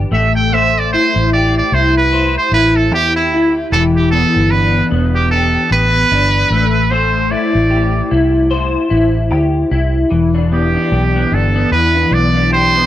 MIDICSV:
0, 0, Header, 1, 4, 480
1, 0, Start_track
1, 0, Key_signature, 1, "minor"
1, 0, Tempo, 800000
1, 314, Time_signature, 4, 2, 24, 8
1, 7718, End_track
2, 0, Start_track
2, 0, Title_t, "Muted trumpet"
2, 0, Program_c, 0, 59
2, 81, Note_on_c, 0, 76, 94
2, 210, Note_off_c, 0, 76, 0
2, 213, Note_on_c, 0, 79, 96
2, 321, Note_on_c, 0, 76, 106
2, 330, Note_off_c, 0, 79, 0
2, 474, Note_on_c, 0, 74, 94
2, 483, Note_off_c, 0, 76, 0
2, 551, Note_off_c, 0, 74, 0
2, 555, Note_on_c, 0, 72, 100
2, 778, Note_off_c, 0, 72, 0
2, 800, Note_on_c, 0, 74, 99
2, 931, Note_off_c, 0, 74, 0
2, 947, Note_on_c, 0, 74, 88
2, 1043, Note_on_c, 0, 72, 96
2, 1052, Note_off_c, 0, 74, 0
2, 1180, Note_off_c, 0, 72, 0
2, 1183, Note_on_c, 0, 71, 98
2, 1404, Note_off_c, 0, 71, 0
2, 1425, Note_on_c, 0, 72, 88
2, 1511, Note_off_c, 0, 72, 0
2, 1524, Note_on_c, 0, 71, 111
2, 1657, Note_on_c, 0, 69, 93
2, 1666, Note_off_c, 0, 71, 0
2, 1753, Note_off_c, 0, 69, 0
2, 1767, Note_on_c, 0, 67, 109
2, 1895, Note_off_c, 0, 67, 0
2, 1898, Note_on_c, 0, 64, 84
2, 2121, Note_off_c, 0, 64, 0
2, 2235, Note_on_c, 0, 69, 102
2, 2300, Note_off_c, 0, 69, 0
2, 2380, Note_on_c, 0, 67, 80
2, 2461, Note_off_c, 0, 67, 0
2, 2465, Note_on_c, 0, 69, 98
2, 2704, Note_on_c, 0, 71, 97
2, 2713, Note_off_c, 0, 69, 0
2, 2915, Note_off_c, 0, 71, 0
2, 3094, Note_on_c, 0, 67, 86
2, 3183, Note_off_c, 0, 67, 0
2, 3186, Note_on_c, 0, 69, 100
2, 3412, Note_off_c, 0, 69, 0
2, 3434, Note_on_c, 0, 71, 120
2, 4147, Note_on_c, 0, 72, 92
2, 4156, Note_off_c, 0, 71, 0
2, 4388, Note_on_c, 0, 74, 84
2, 4397, Note_off_c, 0, 72, 0
2, 4870, Note_off_c, 0, 74, 0
2, 6321, Note_on_c, 0, 67, 82
2, 6806, Note_on_c, 0, 69, 81
2, 6815, Note_off_c, 0, 67, 0
2, 7030, Note_off_c, 0, 69, 0
2, 7034, Note_on_c, 0, 71, 101
2, 7281, Note_on_c, 0, 74, 104
2, 7290, Note_off_c, 0, 71, 0
2, 7516, Note_off_c, 0, 74, 0
2, 7518, Note_on_c, 0, 72, 111
2, 7718, Note_off_c, 0, 72, 0
2, 7718, End_track
3, 0, Start_track
3, 0, Title_t, "Clean electric guitar"
3, 0, Program_c, 1, 27
3, 0, Note_on_c, 1, 52, 75
3, 0, Note_on_c, 1, 55, 53
3, 0, Note_on_c, 1, 62, 52
3, 0, Note_on_c, 1, 67, 62
3, 0, Note_on_c, 1, 71, 57
3, 68, Note_off_c, 1, 55, 0
3, 70, Note_on_c, 1, 57, 84
3, 129, Note_off_c, 1, 62, 0
3, 130, Note_off_c, 1, 71, 0
3, 310, Note_off_c, 1, 57, 0
3, 317, Note_on_c, 1, 57, 85
3, 321, Note_on_c, 1, 72, 68
3, 335, Note_off_c, 1, 67, 0
3, 499, Note_off_c, 1, 52, 0
3, 562, Note_on_c, 1, 64, 64
3, 802, Note_on_c, 1, 67, 59
3, 1040, Note_off_c, 1, 64, 0
3, 1043, Note_on_c, 1, 64, 56
3, 1270, Note_off_c, 1, 72, 0
3, 1278, Note_on_c, 1, 72, 64
3, 1515, Note_off_c, 1, 64, 0
3, 1517, Note_on_c, 1, 64, 61
3, 1756, Note_off_c, 1, 67, 0
3, 1759, Note_on_c, 1, 67, 63
3, 2000, Note_off_c, 1, 64, 0
3, 2003, Note_on_c, 1, 64, 64
3, 2234, Note_off_c, 1, 67, 0
3, 2235, Note_off_c, 1, 57, 0
3, 2235, Note_on_c, 1, 52, 89
3, 2237, Note_on_c, 1, 67, 56
3, 2293, Note_off_c, 1, 72, 0
3, 2474, Note_on_c, 1, 59, 67
3, 2714, Note_off_c, 1, 64, 0
3, 2716, Note_on_c, 1, 62, 60
3, 2940, Note_off_c, 1, 59, 0
3, 2947, Note_on_c, 1, 59, 67
3, 3188, Note_off_c, 1, 67, 0
3, 3190, Note_on_c, 1, 67, 64
3, 3422, Note_off_c, 1, 59, 0
3, 3429, Note_on_c, 1, 59, 55
3, 3664, Note_off_c, 1, 62, 0
3, 3672, Note_on_c, 1, 62, 68
3, 3911, Note_off_c, 1, 59, 0
3, 3913, Note_on_c, 1, 57, 86
3, 3970, Note_off_c, 1, 62, 0
3, 4139, Note_off_c, 1, 57, 0
3, 4146, Note_on_c, 1, 57, 90
3, 4148, Note_on_c, 1, 72, 71
3, 4164, Note_off_c, 1, 67, 0
3, 4335, Note_off_c, 1, 52, 0
3, 4387, Note_on_c, 1, 64, 62
3, 4623, Note_on_c, 1, 67, 63
3, 4865, Note_off_c, 1, 64, 0
3, 4867, Note_on_c, 1, 64, 63
3, 5096, Note_off_c, 1, 72, 0
3, 5103, Note_on_c, 1, 72, 73
3, 5339, Note_off_c, 1, 64, 0
3, 5341, Note_on_c, 1, 64, 59
3, 5582, Note_off_c, 1, 67, 0
3, 5584, Note_on_c, 1, 67, 65
3, 5826, Note_off_c, 1, 64, 0
3, 5829, Note_on_c, 1, 64, 67
3, 6063, Note_on_c, 1, 52, 76
3, 6068, Note_off_c, 1, 57, 0
3, 6125, Note_off_c, 1, 72, 0
3, 6205, Note_off_c, 1, 64, 0
3, 6208, Note_on_c, 1, 62, 56
3, 6311, Note_on_c, 1, 59, 55
3, 6451, Note_off_c, 1, 62, 0
3, 6458, Note_on_c, 1, 62, 57
3, 6551, Note_off_c, 1, 67, 0
3, 6553, Note_on_c, 1, 67, 63
3, 6689, Note_off_c, 1, 59, 0
3, 6696, Note_on_c, 1, 59, 67
3, 6787, Note_off_c, 1, 62, 0
3, 6795, Note_on_c, 1, 62, 50
3, 6927, Note_off_c, 1, 59, 0
3, 6934, Note_on_c, 1, 59, 67
3, 7027, Note_off_c, 1, 52, 0
3, 7029, Note_on_c, 1, 52, 75
3, 7163, Note_off_c, 1, 62, 0
3, 7170, Note_on_c, 1, 62, 59
3, 7258, Note_off_c, 1, 59, 0
3, 7266, Note_on_c, 1, 59, 61
3, 7401, Note_off_c, 1, 62, 0
3, 7408, Note_on_c, 1, 62, 53
3, 7502, Note_off_c, 1, 67, 0
3, 7505, Note_on_c, 1, 67, 67
3, 7643, Note_off_c, 1, 59, 0
3, 7650, Note_on_c, 1, 59, 62
3, 7718, Note_off_c, 1, 52, 0
3, 7718, Note_off_c, 1, 59, 0
3, 7718, Note_off_c, 1, 62, 0
3, 7718, Note_off_c, 1, 67, 0
3, 7718, End_track
4, 0, Start_track
4, 0, Title_t, "Fingered electric bass"
4, 0, Program_c, 2, 33
4, 69, Note_on_c, 2, 33, 93
4, 570, Note_off_c, 2, 33, 0
4, 695, Note_on_c, 2, 33, 83
4, 965, Note_off_c, 2, 33, 0
4, 1033, Note_on_c, 2, 36, 86
4, 1417, Note_off_c, 2, 36, 0
4, 1510, Note_on_c, 2, 33, 92
4, 1750, Note_off_c, 2, 33, 0
4, 1750, Note_on_c, 2, 40, 94
4, 1991, Note_off_c, 2, 40, 0
4, 1991, Note_on_c, 2, 38, 84
4, 2184, Note_off_c, 2, 38, 0
4, 2232, Note_on_c, 2, 28, 100
4, 2540, Note_off_c, 2, 28, 0
4, 2617, Note_on_c, 2, 31, 90
4, 2886, Note_off_c, 2, 31, 0
4, 2951, Note_on_c, 2, 28, 92
4, 3336, Note_off_c, 2, 28, 0
4, 3426, Note_on_c, 2, 33, 86
4, 3620, Note_off_c, 2, 33, 0
4, 3668, Note_on_c, 2, 31, 81
4, 3862, Note_off_c, 2, 31, 0
4, 3903, Note_on_c, 2, 33, 90
4, 4406, Note_off_c, 2, 33, 0
4, 4531, Note_on_c, 2, 33, 93
4, 4802, Note_off_c, 2, 33, 0
4, 4870, Note_on_c, 2, 36, 78
4, 5255, Note_off_c, 2, 36, 0
4, 5347, Note_on_c, 2, 33, 85
4, 5587, Note_off_c, 2, 33, 0
4, 5587, Note_on_c, 2, 38, 102
4, 5781, Note_off_c, 2, 38, 0
4, 5829, Note_on_c, 2, 36, 90
4, 6022, Note_off_c, 2, 36, 0
4, 6070, Note_on_c, 2, 28, 86
4, 6454, Note_off_c, 2, 28, 0
4, 6552, Note_on_c, 2, 35, 91
4, 6743, Note_off_c, 2, 35, 0
4, 6791, Note_on_c, 2, 31, 78
4, 6983, Note_off_c, 2, 31, 0
4, 7030, Note_on_c, 2, 40, 96
4, 7222, Note_off_c, 2, 40, 0
4, 7267, Note_on_c, 2, 35, 91
4, 7718, Note_off_c, 2, 35, 0
4, 7718, End_track
0, 0, End_of_file